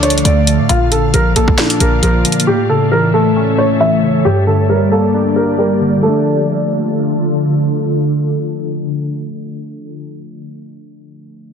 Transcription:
0.00 0.22 D2 loud
0.00 0.68 D3 medium
0.00 0.72 D3 medium
0.00 0.25 F3 medium
0.00 0.24 A3 medium
0.00 0.03 D4 loud
0.00 0.68 D4 medium
0.00 0.69 D4 medium
0.00 0.68 A4 medium
0.00 0.20 C#5 medium
0.00 0.69 D5 medium
0.00 2.44 F5 medium
0.00 closed hi-hat medium
0.10 closed hi-hat medium
0.18 closed hi-hat medium
0.25 0.60 D2 loud
0.25 0.69 A3 medium
0.25 0.67 D5 medium
0.25 closed hi-hat medium
0.47 0.69 F3 medium
0.47 closed hi-hat medium
0.59 0.69 A2 loud
0.69 1.12 A#1 loud
0.69 1.81 A#2 medium
0.69 2.45 A#3 medium
0.69 0.86 F4 loud
0.69 2.45 F4 medium
0.69 2.45 D5 medium
0.69 closed hi-hat medium
0.92 2.03 D3 medium
0.92 1.08 A4 medium
0.92 closed hi-hat medium
1.14 1.35 A#1 loud
1.14 2.02 F3 medium
1.14 1.31 A#4 medium
1.14 closed hi-hat medium
1.36 1.57 A#1 loud
1.36 1.79 A#3 loud
1.36 1.78 A4 medium
1.36 closed hi-hat medium
1.48 kick medium
1.58 2.47 D4 medium
1.58 snare loud
1.58 closed hi-hat medium
1.70 closed hi-hat medium
1.80 2.02 A#1 loud
1.80 2.47 A#3 medium
1.80 1.97 A#4 medium
1.80 closed hi-hat medium
2.03 2.24 A#1 loud
2.03 2.47 F3 loud
2.03 2.44 A#4 medium
2.03 closed hi-hat medium
2.25 2.47 D3 medium
2.25 closed hi-hat medium
2.32 closed hi-hat medium
2.40 closed hi-hat medium
2.47 3.58 A2 medium
2.47 4.23 A3 medium
2.47 2.64 G4 loud
2.47 4.23 A4 medium
2.47 4.23 C#5 medium
2.47 4.23 E5 medium
2.69 3.81 C#3 medium
2.69 2.86 A4 medium
2.92 3.79 E3 medium
2.92 3.08 A#4 medium
3.14 3.57 A3 loud
3.14 3.56 A4 medium
3.36 4.25 C#4 medium
3.58 4.25 A3 medium
3.58 3.75 C#5 medium
3.80 4.25 E3 medium
3.80 4.22 E5 medium
4.03 4.25 C#3 medium
4.25 5.36 G2 medium
4.25 6.01 G3 medium
4.25 6.01 A#3 medium
4.25 4.42 G4 loud
4.25 6.01 G4 medium
4.25 6.01 D5 medium
4.47 5.58 D3 medium
4.47 4.64 A4 medium
4.69 5.57 G3 medium
4.69 4.86 A#4 medium
4.92 5.35 A#3 loud
4.92 5.33 A4 medium
5.14 6.03 D4 medium
5.36 6.03 A#3 medium
5.36 5.53 A#4 medium
5.58 6.03 G3 medium
5.58 6.00 A#4 medium
5.81 5.95 D3 medium
5.97 9.60 D3 medium
5.97 9.64 F3 medium
6.03 9.66 D3 medium
6.03 9.68 A3 medium
6.03 9.66 D4 medium
6.03 9.66 F4 medium
6.03 7.32 A4 medium
6.03 9.66 A4 medium
6.09 9.72 D4 medium

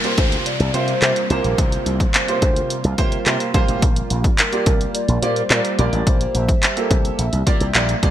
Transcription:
0.00 3.78 C3 medium
0.00 3.78 G3 medium
0.00 8.11 A#3 medium
0.00 0.48 A#3 medium
0.00 6.03 F4 medium
0.00 0.48 F4 medium
0.00 0.19 A#4 loud
0.00 closed hi-hat medium
0.00 downlifter medium
0.04 0.48 G4 medium
0.04 0.49 C5 medium
0.18 0.36 D2 medium
0.18 0.48 C5 loud
0.18 kick medium
0.18 closed hi-hat medium
0.32 closed hi-hat soft
0.46 0.76 D5 loud
0.46 closed hi-hat medium
0.60 0.69 C2 medium
0.60 closed hi-hat medium
0.74 0.92 C3 loud
0.74 0.92 A#3 medium
0.74 0.92 F4 medium
0.74 0.92 G4 medium
0.74 1.32 C5 loud
0.74 0.92 C5 medium
0.74 closed hi-hat medium
0.88 closed hi-hat soft
1.02 1.11 C3 loud
1.02 1.20 A#3 medium
1.02 1.20 F4 medium
1.02 1.20 G4 medium
1.02 1.20 C5 medium
1.02 clap loud
1.02 closed hi-hat medium
1.16 closed hi-hat medium
1.30 1.39 C2 medium
1.30 1.92 A#3 medium
1.30 1.92 F4 medium
1.30 1.92 G4 medium
1.30 1.60 A#4 medium
1.30 1.93 C5 medium
1.30 closed hi-hat medium
1.44 1.53 A#1 medium
1.44 closed hi-hat soft
1.58 1.77 C2 loud
1.58 2.14 C5 loud
1.58 kick loud
1.58 closed hi-hat medium
1.72 closed hi-hat medium
1.86 2.05 C2 loud
1.86 closed hi-hat medium
2.00 kick medium
2.00 closed hi-hat soft
2.14 2.95 C5 medium
2.14 clap loud
2.14 closed hi-hat loud
2.28 2.73 A#3 medium
2.28 2.73 F4 medium
2.28 2.73 G4 medium
2.28 2.73 C5 medium
2.28 closed hi-hat medium
2.42 2.61 D2 medium
2.42 kick medium
2.42 closed hi-hat medium
2.56 closed hi-hat soft
2.70 closed hi-hat medium
2.84 2.94 C2 medium
2.84 closed hi-hat medium
2.98 3.17 C3 loud
2.98 3.16 A#3 loud
2.98 3.16 F4 medium
2.98 3.16 G4 medium
2.98 3.16 C5 loud
2.98 kick medium
2.98 closed hi-hat medium
3.12 closed hi-hat soft
3.26 3.36 C3 loud
3.26 3.44 A#3 medium
3.26 3.44 F4 medium
3.26 3.44 G4 medium
3.26 3.44 C5 medium
3.26 clap loud
3.26 closed hi-hat medium
3.40 closed hi-hat medium
3.54 3.64 C2 medium
3.54 3.82 A#3 loud
3.54 3.82 F4 loud
3.54 3.82 G4 medium
3.54 3.83 C5 loud
3.54 kick loud
3.54 closed hi-hat medium
3.68 3.78 A1 medium
3.68 closed hi-hat soft
3.82 4.01 A#1 loud
3.82 8.11 G3 medium
3.82 kick loud
3.82 closed hi-hat medium
3.96 closed hi-hat medium
4.10 4.29 A#1 loud
4.10 closed hi-hat medium
4.24 kick medium
4.24 closed hi-hat medium
4.39 4.91 A#4 loud
4.39 clap loud
4.39 closed hi-hat loud
4.52 4.97 A#3 medium
4.52 4.97 F4 medium
4.52 4.97 G4 medium
4.52 4.97 D5 medium
4.52 closed hi-hat medium
4.66 4.85 C2 medium
4.66 kick medium
4.66 closed hi-hat medium
4.81 closed hi-hat soft
4.95 5.24 D5 loud
4.95 closed hi-hat medium
5.08 5.18 A#1 medium
5.08 closed hi-hat medium
5.22 5.41 A#2 loud
5.22 5.40 A#3 medium
5.22 5.40 F4 medium
5.22 5.40 G4 medium
5.22 5.80 C5 loud
5.22 5.41 D5 loud
5.22 closed hi-hat medium
5.36 closed hi-hat soft
5.50 5.60 A#2 loud
5.50 5.68 A#3 medium
5.50 5.68 F4 medium
5.50 5.69 G4 medium
5.50 5.69 D5 medium
5.50 clap loud
5.50 closed hi-hat medium
5.65 closed hi-hat medium
5.78 5.88 A#1 medium
5.78 6.41 A#3 medium
5.78 6.41 F4 medium
5.78 6.41 G4 medium
5.78 6.08 A#4 medium
5.78 6.41 D5 loud
5.78 closed hi-hat medium
5.93 6.02 A1 medium
5.93 closed hi-hat soft
6.06 6.25 A#1 loud
6.06 6.62 C5 loud
6.06 8.11 E5 medium
6.06 kick loud
6.06 closed hi-hat medium
6.21 closed hi-hat medium
6.35 6.53 A#1 loud
6.35 closed hi-hat medium
6.49 kick medium
6.49 closed hi-hat medium
6.63 7.43 C5 medium
6.63 clap loud
6.63 closed hi-hat loud
6.77 7.21 A#3 medium
6.77 7.21 F4 medium
6.77 7.21 G4 medium
6.77 7.21 A4 medium
6.77 closed hi-hat medium
6.91 7.09 C2 medium
6.91 kick medium
6.91 closed hi-hat medium
7.05 closed hi-hat soft
7.19 7.28 A#1 medium
7.19 closed hi-hat medium
7.33 7.42 C2 medium
7.33 closed hi-hat medium
7.46 7.64 A#3 loud
7.46 7.65 F4 medium
7.46 7.65 G4 medium
7.46 7.65 D5 loud
7.46 kick medium
7.46 closed hi-hat medium
7.61 7.70 C2 medium
7.61 closed hi-hat soft
7.75 7.93 A#1 loud
7.75 7.93 A#3 medium
7.75 7.93 F4 medium
7.75 7.93 G4 medium
7.75 7.93 D5 medium
7.75 clap loud
7.75 closed hi-hat medium
7.89 closed hi-hat medium
8.02 8.11 C2 medium
8.02 8.11 A#3 loud
8.02 8.11 F4 medium
8.02 8.11 G4 medium
8.02 8.11 D5 loud
8.02 kick loud
8.02 closed hi-hat medium

